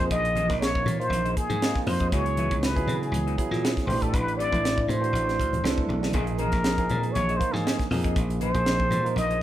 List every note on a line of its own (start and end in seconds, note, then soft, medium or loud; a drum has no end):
0.00 0.46 F3 medium
0.00 0.46 A#3 medium
0.00 0.46 D#4 medium
0.00 0.14 G#4 soft
0.00 0.46 G#4 medium
0.00 0.10 C5 medium
0.00 0.13 C5 soft
0.00 0.13 D#5 medium
0.00 closed hi-hat soft
0.11 0.47 A#1 medium
0.11 0.57 D#5 loud
0.11 kick medium
0.11 closed hi-hat medium
0.25 closed hi-hat soft
0.36 0.49 C#4 medium
0.36 0.49 G#4 medium
0.36 0.49 C5 medium
0.36 0.49 D#5 medium
0.36 closed hi-hat medium
0.36 high conga medium
0.48 0.84 A#1 medium
0.48 0.96 F3 medium
0.48 0.96 A#3 medium
0.48 0.97 D#4 medium
0.48 0.97 F4 medium
0.48 muted clean electric guitar stroke soft
0.48 kick medium
0.48 snare soft
0.48 closed hi-hat soft
0.60 0.75 C#4 medium
0.60 0.74 G#4 medium
0.60 0.74 C5 medium
0.60 0.96 C#5 medium
0.60 0.73 D#5 medium
0.60 snare loud
0.60 closed hi-hat medium
0.74 muted clean electric guitar stroke soft
0.74 kick medium
0.85 1.09 A#2 medium
0.85 closed hi-hat medium
0.85 high conga medium
0.85 low conga medium
0.99 1.58 F3 medium
0.99 1.59 A#3 medium
0.99 1.59 D#4 medium
0.99 1.59 F4 medium
0.99 1.38 C5 loud
0.99 muted clean electric guitar stroke soft
0.99 closed hi-hat soft
1.10 1.34 A#1 medium
1.10 muted clean electric guitar stroke soft
1.10 closed hi-hat medium
1.10 high conga medium
1.25 1.36 C#4 medium
1.25 1.36 G#4 medium
1.25 1.36 C5 medium
1.25 1.36 D#5 medium
1.25 closed hi-hat soft
1.37 1.89 G#4 medium
1.37 muted clean electric guitar stroke soft
1.37 kick medium
1.37 closed hi-hat medium
1.50 1.73 G#2 medium
1.50 closed hi-hat soft
1.50 high conga medium
1.62 2.09 F3 medium
1.62 2.10 A#3 medium
1.62 1.75 C#4 medium
1.62 2.10 D#4 medium
1.62 2.10 F4 medium
1.62 1.75 G#4 medium
1.62 1.75 C5 medium
1.62 1.74 D#5 medium
1.62 snare loud
1.62 closed hi-hat medium
1.75 kick medium
1.75 snare soft
1.87 2.10 F2 medium
1.87 2.13 C5 medium
1.87 muted clean electric guitar stroke soft
1.87 open hi-hat medium
1.87 low conga medium
2.00 2.13 G#4 soft
2.00 2.12 C5 medium
2.00 2.12 D#5 medium
2.00 kick medium
2.00 closed hi-hat soft
2.12 2.48 C#2 medium
2.12 2.73 F#3 medium
2.12 2.72 B3 medium
2.12 2.26 D#4 medium
2.12 2.72 E4 medium
2.12 2.26 F#4 medium
2.12 2.73 G#4 medium
2.12 2.26 B4 medium
2.12 2.65 C#5 loud
2.12 2.25 E5 medium
2.12 kick loud
2.12 closed hi-hat medium
2.26 muted clean electric guitar stroke soft
2.26 closed hi-hat soft
2.37 2.51 D#4 medium
2.37 2.51 F#4 medium
2.37 2.51 B4 medium
2.37 2.51 E5 medium
2.37 closed hi-hat medium
2.37 high conga medium
2.51 2.85 C#2 medium
2.51 muted clean electric guitar stroke soft
2.51 kick medium
2.51 closed hi-hat soft
2.63 2.76 D#4 medium
2.63 2.76 F#4 medium
2.63 3.04 B4 medium
2.63 2.76 B4 medium
2.63 2.76 E5 medium
2.63 snare loud
2.63 closed hi-hat medium
2.76 3.35 F#3 medium
2.76 3.35 B3 medium
2.76 3.35 E4 medium
2.76 3.35 G#4 medium
2.76 muted clean electric guitar stroke soft
2.76 kick medium
2.76 closed hi-hat soft
2.87 3.11 C#3 medium
2.87 closed hi-hat medium
2.87 high conga medium
2.87 low conga medium
3.02 3.38 G#4 medium
3.02 muted clean electric guitar stroke soft
3.02 closed hi-hat soft
3.12 3.35 C#2 medium
3.12 muted clean electric guitar stroke soft
3.12 closed hi-hat medium
3.12 high conga medium
3.27 3.37 D#4 medium
3.27 3.37 F#4 medium
3.27 3.37 B4 medium
3.27 3.37 E5 medium
3.27 closed hi-hat soft
3.38 3.85 F#3 medium
3.38 3.86 B3 medium
3.38 3.86 E4 medium
3.38 3.86 G#4 medium
3.38 muted clean electric guitar stroke soft
3.38 kick medium
3.38 closed hi-hat medium
3.51 3.75 A#2 medium
3.51 snare soft
3.51 high conga medium
3.63 3.77 D#4 medium
3.63 3.75 F#4 medium
3.63 3.75 B4 medium
3.63 3.75 E5 medium
3.63 snare loud
3.63 closed hi-hat medium
3.76 muted clean electric guitar stroke soft
3.76 kick medium
3.76 snare soft
3.76 closed hi-hat soft
3.87 4.11 A1 medium
3.87 4.47 E3 medium
3.87 4.48 A3 medium
3.87 4.48 D4 medium
3.87 4.48 G4 medium
3.87 4.04 C5 medium
3.87 open hi-hat medium
3.87 low conga medium
4.02 4.17 G4 soft
4.02 4.15 A4 medium
4.02 4.17 B4 medium
4.02 4.16 D5 medium
4.02 kick medium
4.02 closed hi-hat soft
4.13 4.49 A1 medium
4.13 4.39 B4 loud
4.13 kick loud
4.13 closed hi-hat medium
4.27 muted clean electric guitar stroke soft
4.27 closed hi-hat soft
4.38 4.52 C4 medium
4.38 4.52 G4 medium
4.38 4.52 B4 medium
4.38 4.91 D5 loud
4.38 4.52 D5 medium
4.38 closed hi-hat medium
4.51 4.86 A1 medium
4.51 4.99 E3 medium
4.51 4.99 A3 medium
4.51 4.99 D4 medium
4.51 4.99 E4 medium
4.51 muted clean electric guitar stroke soft
4.51 kick medium
4.51 closed hi-hat soft
4.63 4.77 C4 soft
4.63 4.77 G4 medium
4.63 4.77 B4 medium
4.63 4.77 D5 medium
4.63 snare loud
4.63 closed hi-hat medium
4.78 muted clean electric guitar stroke soft
4.78 kick medium
4.88 5.12 A2 medium
4.88 5.90 C5 medium
4.88 closed hi-hat medium
4.88 low conga medium
5.01 5.60 E3 medium
5.01 5.60 A3 medium
5.01 5.60 D4 medium
5.01 5.61 F#4 medium
5.01 muted clean electric guitar stroke soft
5.01 closed hi-hat soft
5.13 5.37 A1 medium
5.13 closed hi-hat medium
5.28 5.39 C4 medium
5.28 5.39 G4 medium
5.28 5.39 B4 medium
5.28 5.39 D5 medium
5.28 snare soft
5.28 closed hi-hat soft
5.39 5.62 D2 medium
5.39 muted clean electric guitar stroke soft
5.39 kick medium
5.39 closed hi-hat medium
5.53 closed hi-hat soft
5.53 high conga medium
5.53 low conga medium
5.63 5.86 C2 medium
5.63 6.12 E3 medium
5.63 6.12 A3 medium
5.63 5.77 C4 medium
5.63 6.12 D4 medium
5.63 5.78 G4 medium
5.63 6.12 A4 medium
5.63 5.77 B4 medium
5.63 5.77 D5 medium
5.63 snare loud
5.63 closed hi-hat medium
5.78 muted clean electric guitar stroke soft
5.78 kick medium
5.88 6.11 B1 medium
5.88 muted clean electric guitar stroke soft
5.88 high tom medium
5.88 low conga medium
6.03 6.14 G4 medium
6.03 6.15 B4 medium
6.03 6.14 D5 medium
6.03 snare medium
6.13 6.50 A#1 medium
6.13 6.74 F3 medium
6.13 6.74 A#3 medium
6.13 6.28 C#4 medium
6.13 6.74 D#4 medium
6.13 6.27 G#4 medium
6.13 6.75 G#4 medium
6.13 6.27 C5 medium
6.13 6.27 D#5 medium
6.13 kick loud
6.13 closed hi-hat medium
6.27 muted clean electric guitar stroke soft
6.27 closed hi-hat soft
6.38 6.53 C#4 medium
6.38 6.53 G#4 medium
6.38 7.13 A#4 medium
6.38 6.53 C5 medium
6.38 6.53 D#5 medium
6.38 closed hi-hat medium
6.38 high conga medium
6.52 6.87 A#1 medium
6.52 muted clean electric guitar stroke soft
6.52 kick medium
6.52 snare soft
6.52 closed hi-hat soft
6.64 6.78 C#4 medium
6.64 6.78 G#4 medium
6.64 6.79 C5 medium
6.64 6.78 D#5 medium
6.64 snare loud
6.64 closed hi-hat medium
6.78 7.37 F3 medium
6.78 7.37 A#3 medium
6.78 7.37 D#4 medium
6.78 7.37 G#4 medium
6.78 muted clean electric guitar stroke soft
6.78 kick medium
6.78 closed hi-hat soft
6.90 7.13 A#2 medium
6.90 closed hi-hat soft
6.90 high conga medium
6.90 low conga medium
7.03 muted clean electric guitar stroke soft
7.03 closed hi-hat soft
7.12 7.38 A#1 medium
7.12 7.38 C#5 loud
7.12 closed hi-hat medium
7.16 high conga medium
7.29 7.40 C#4 medium
7.29 7.39 G#4 soft
7.29 7.40 C5 medium
7.29 7.40 D#5 medium
7.29 closed hi-hat soft
7.37 7.87 F3 medium
7.37 7.87 A#3 medium
7.37 7.88 D#4 medium
7.37 7.88 F4 medium
7.37 7.54 C5 medium
7.37 kick medium
7.41 closed hi-hat medium
7.53 7.77 G#2 medium
7.53 7.90 G#4 medium
7.53 snare soft
7.53 high conga medium
7.65 7.79 C#4 medium
7.65 7.78 G#4 medium
7.65 7.78 C5 medium
7.65 7.78 D#5 medium
7.65 snare loud
7.65 closed hi-hat medium
7.79 kick medium
7.79 snare soft
7.79 closed hi-hat soft
7.90 8.14 F2 medium
7.90 8.51 F3 medium
7.90 8.51 A#3 medium
7.90 8.51 D#4 medium
7.90 8.51 G#4 medium
7.90 muted clean electric guitar stroke soft
7.90 open hi-hat medium
7.90 low conga medium
8.04 8.19 G#4 soft
8.04 8.19 C5 soft
8.04 8.18 D#5 medium
8.04 kick medium
8.04 closed hi-hat soft
8.16 8.51 A#1 medium
8.16 kick loud
8.16 closed hi-hat medium
8.30 muted clean electric guitar stroke soft
8.30 closed hi-hat soft
8.41 8.54 C#4 medium
8.41 8.54 G#4 medium
8.41 8.53 C5 medium
8.41 9.13 C5 loud
8.41 8.53 D#5 medium
8.41 closed hi-hat medium
8.41 high conga medium
8.54 8.89 A#1 medium
8.54 9.01 F3 medium
8.54 9.01 A#3 medium
8.54 9.02 D#4 medium
8.54 9.02 G#4 medium
8.54 muted clean electric guitar stroke soft
8.54 kick medium
8.54 closed hi-hat soft
8.66 8.79 C#4 medium
8.66 8.79 G#4 medium
8.66 8.78 C5 medium
8.66 8.78 D#5 medium
8.66 snare loud
8.66 closed hi-hat medium
8.79 muted clean electric guitar stroke soft
8.79 kick medium
8.90 9.14 A#2 medium
8.90 closed hi-hat medium
8.90 high conga medium
8.90 low conga medium
9.03 9.43 F3 medium
9.03 9.43 A#3 medium
9.03 9.43 D#4 medium
9.03 9.43 A#4 medium
9.03 muted clean electric guitar stroke soft
9.03 closed hi-hat soft
9.16 9.39 A#1 medium
9.16 9.43 D#5 loud
9.16 muted clean electric guitar stroke soft
9.16 closed hi-hat medium
9.16 high conga medium
9.30 9.40 C#4 medium
9.30 9.40 G#4 medium
9.30 9.41 C5 medium
9.30 9.41 D#5 medium
9.30 closed hi-hat soft